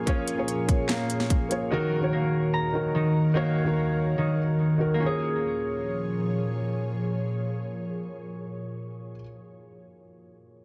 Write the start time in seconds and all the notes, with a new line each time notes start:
Already playing: A#2 F3 A#3 F4 G#4 C#5 G#5
0.06 A#3 C#4 F4 G#4 C#5, kick, closed hi-hat
0.28 closed hi-hat
0.36 A#3 F4 G#4 C#5
0.48 closed hi-hat
0.69 kick, closed hi-hat
0.89 A#3, snare, clap, closed hi-hat
1.10 closed hi-hat
1.20 snare
1.30 kick, closed hi-hat
1.49 A#3 F4 G#4 C#5, closed hi-hat
1.70 D#2 D#3 D#4 F#4 A#4
2.01 D#3 D#4 F#4 C#5
2.13 A#3
2.53 A#5
2.73 D#3 D#4 F#4 A#4
2.95 D#3
3.34 D#3 A#3 D#4 F#4 C#5
3.64 D#3 D#4 F#4 A#4
4.18 D#3
4.78 D#3 D#4 F#4 A#4
4.94 A#3
4.98 A#2 F3 C#4 F4 G#4 C#5
5.02 G#4
5.06 C#5